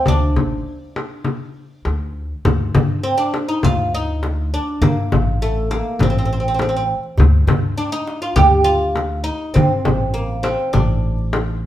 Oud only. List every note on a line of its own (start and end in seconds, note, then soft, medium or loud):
0.08 1.82 D4 medium
3.03 3.17 C4 medium
3.18 3.48 D4 medium
3.49 3.64 D#4 medium
3.64 3.94 F4 medium
3.94 4.53 D#4 medium
4.54 4.83 D4 medium
4.82 5.37 A#3 medium
5.42 5.70 A3 medium
5.71 5.98 A#3 medium
6.03 6.09 C4 medium
6.10 6.16 C4 soft
6.18 6.24 C4 medium
6.25 6.31 C4 soft
6.33 6.38 C4 medium
6.40 6.46 C4 soft
6.48 6.53 C4 soft
6.54 6.61 C4 soft
6.62 6.68 C4 medium
6.69 6.75 C4 soft
6.76 6.83 C4 medium
7.78 7.92 D4 medium
7.92 8.21 D#4 medium
8.22 8.35 F4 medium
8.36 8.64 G4 loud
8.64 9.23 F4 medium
9.24 9.55 D#4 medium
9.54 10.13 C4 medium
10.14 10.45 A#3 medium
10.43 10.73 C4 medium
10.73 11.59 D4 medium